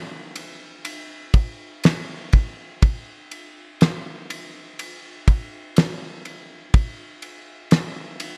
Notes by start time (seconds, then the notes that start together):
0.36 ride
0.85 ride
1.34 kick, ride
1.84 snare, ride
2.33 kick, ride
2.82 kick, ride
3.31 ride
3.81 snare, ride
4.30 ride
4.79 ride
5.28 kick, ride
5.76 snare, ride
6.25 ride
6.74 kick, ride
7.22 ride
7.71 snare, ride
8.20 ride